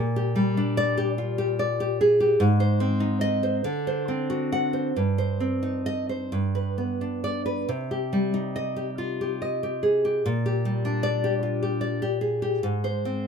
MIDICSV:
0, 0, Header, 1, 2, 480
1, 0, Start_track
1, 0, Key_signature, -3, "minor"
1, 0, Tempo, 814111
1, 1406, Time_signature, 6, 3, 24, 8
1, 1888, Tempo, 874636
1, 2848, Tempo, 907716
1, 4288, Tempo, 860832
1, 5248, Tempo, 843882
1, 5728, Tempo, 784314
1, 6688, Tempo, 829876
1, 7533, End_track
2, 0, Start_track
2, 0, Title_t, "Nylon-string guitar"
2, 0, Program_c, 0, 24
2, 0, Note_on_c, 0, 46, 69
2, 96, Note_on_c, 0, 67, 61
2, 210, Note_on_c, 0, 55, 65
2, 338, Note_on_c, 0, 62, 61
2, 456, Note_on_c, 0, 74, 87
2, 568, Note_off_c, 0, 67, 0
2, 575, Note_on_c, 0, 67, 68
2, 644, Note_off_c, 0, 74, 0
2, 694, Note_off_c, 0, 62, 0
2, 696, Note_on_c, 0, 65, 54
2, 808, Note_off_c, 0, 67, 0
2, 815, Note_on_c, 0, 67, 68
2, 932, Note_off_c, 0, 55, 0
2, 939, Note_on_c, 0, 74, 65
2, 1056, Note_off_c, 0, 67, 0
2, 1063, Note_on_c, 0, 67, 63
2, 1181, Note_off_c, 0, 74, 0
2, 1184, Note_on_c, 0, 68, 58
2, 1293, Note_off_c, 0, 67, 0
2, 1300, Note_on_c, 0, 67, 63
2, 1387, Note_off_c, 0, 46, 0
2, 1409, Note_off_c, 0, 65, 0
2, 1411, Note_off_c, 0, 67, 0
2, 1412, Note_off_c, 0, 68, 0
2, 1415, Note_on_c, 0, 44, 84
2, 1533, Note_on_c, 0, 72, 60
2, 1652, Note_on_c, 0, 60, 66
2, 1771, Note_on_c, 0, 63, 62
2, 1890, Note_off_c, 0, 72, 0
2, 1892, Note_on_c, 0, 75, 89
2, 2014, Note_on_c, 0, 72, 60
2, 2079, Note_off_c, 0, 75, 0
2, 2108, Note_off_c, 0, 44, 0
2, 2127, Note_off_c, 0, 60, 0
2, 2127, Note_off_c, 0, 63, 0
2, 2128, Note_off_c, 0, 72, 0
2, 2130, Note_on_c, 0, 50, 75
2, 2255, Note_on_c, 0, 72, 57
2, 2371, Note_on_c, 0, 60, 52
2, 2489, Note_on_c, 0, 66, 59
2, 2614, Note_on_c, 0, 78, 77
2, 2721, Note_off_c, 0, 72, 0
2, 2728, Note_on_c, 0, 72, 53
2, 2804, Note_off_c, 0, 78, 0
2, 2830, Note_off_c, 0, 50, 0
2, 2849, Note_off_c, 0, 72, 0
2, 2851, Note_off_c, 0, 66, 0
2, 2852, Note_off_c, 0, 60, 0
2, 2855, Note_on_c, 0, 43, 59
2, 2971, Note_on_c, 0, 72, 53
2, 3087, Note_on_c, 0, 60, 52
2, 3204, Note_on_c, 0, 63, 52
2, 3326, Note_off_c, 0, 72, 0
2, 3329, Note_on_c, 0, 75, 75
2, 3450, Note_off_c, 0, 75, 0
2, 3452, Note_on_c, 0, 72, 49
2, 3551, Note_off_c, 0, 43, 0
2, 3568, Note_off_c, 0, 63, 0
2, 3570, Note_off_c, 0, 60, 0
2, 3571, Note_off_c, 0, 72, 0
2, 3572, Note_on_c, 0, 43, 59
2, 3693, Note_on_c, 0, 71, 44
2, 3814, Note_on_c, 0, 59, 44
2, 3937, Note_on_c, 0, 62, 45
2, 4055, Note_off_c, 0, 71, 0
2, 4058, Note_on_c, 0, 74, 68
2, 4170, Note_off_c, 0, 74, 0
2, 4173, Note_on_c, 0, 71, 50
2, 4270, Note_off_c, 0, 43, 0
2, 4290, Note_off_c, 0, 71, 0
2, 4291, Note_off_c, 0, 59, 0
2, 4292, Note_off_c, 0, 62, 0
2, 4294, Note_on_c, 0, 48, 61
2, 4419, Note_on_c, 0, 67, 53
2, 4540, Note_on_c, 0, 55, 53
2, 4658, Note_on_c, 0, 63, 53
2, 4780, Note_on_c, 0, 75, 66
2, 4889, Note_off_c, 0, 67, 0
2, 4896, Note_on_c, 0, 67, 57
2, 4967, Note_off_c, 0, 75, 0
2, 5017, Note_on_c, 0, 65, 44
2, 5137, Note_off_c, 0, 67, 0
2, 5144, Note_on_c, 0, 67, 50
2, 5252, Note_off_c, 0, 55, 0
2, 5260, Note_on_c, 0, 75, 49
2, 5372, Note_off_c, 0, 63, 0
2, 5375, Note_off_c, 0, 67, 0
2, 5382, Note_on_c, 0, 67, 54
2, 5494, Note_on_c, 0, 68, 48
2, 5612, Note_off_c, 0, 67, 0
2, 5619, Note_on_c, 0, 67, 52
2, 5709, Note_off_c, 0, 48, 0
2, 5730, Note_off_c, 0, 68, 0
2, 5732, Note_off_c, 0, 65, 0
2, 5733, Note_off_c, 0, 67, 0
2, 5735, Note_off_c, 0, 75, 0
2, 5738, Note_on_c, 0, 46, 68
2, 5861, Note_on_c, 0, 67, 57
2, 5981, Note_on_c, 0, 55, 53
2, 6100, Note_on_c, 0, 62, 61
2, 6212, Note_on_c, 0, 74, 76
2, 6332, Note_off_c, 0, 67, 0
2, 6339, Note_on_c, 0, 67, 60
2, 6402, Note_off_c, 0, 74, 0
2, 6455, Note_on_c, 0, 65, 46
2, 6569, Note_off_c, 0, 67, 0
2, 6576, Note_on_c, 0, 67, 53
2, 6688, Note_on_c, 0, 74, 54
2, 6692, Note_off_c, 0, 55, 0
2, 6803, Note_off_c, 0, 67, 0
2, 6807, Note_off_c, 0, 62, 0
2, 6810, Note_on_c, 0, 67, 59
2, 6918, Note_off_c, 0, 74, 0
2, 6920, Note_on_c, 0, 68, 45
2, 7035, Note_off_c, 0, 67, 0
2, 7042, Note_on_c, 0, 67, 55
2, 7142, Note_off_c, 0, 46, 0
2, 7160, Note_off_c, 0, 68, 0
2, 7162, Note_off_c, 0, 67, 0
2, 7163, Note_off_c, 0, 65, 0
2, 7164, Note_on_c, 0, 44, 68
2, 7285, Note_on_c, 0, 72, 54
2, 7408, Note_on_c, 0, 60, 51
2, 7533, Note_off_c, 0, 44, 0
2, 7533, Note_off_c, 0, 60, 0
2, 7533, Note_off_c, 0, 72, 0
2, 7533, End_track
0, 0, End_of_file